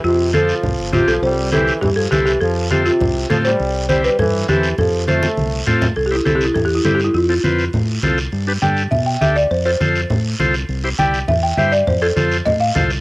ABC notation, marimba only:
X:1
M:4/4
L:1/8
Q:1/4=203
K:C
V:1 name="Marimba"
F2 A4 F A | c2 A2 G A G G | A2 G F3 A c- | c2 c B A2 G2 |
A2 c4 z2 | (3A G E (3A G E (3A G E (3A G E | F6 z2 | z2 g2 e g e d |
c c z6 | z2 g2 e g e d | c A z2 _e f3 |]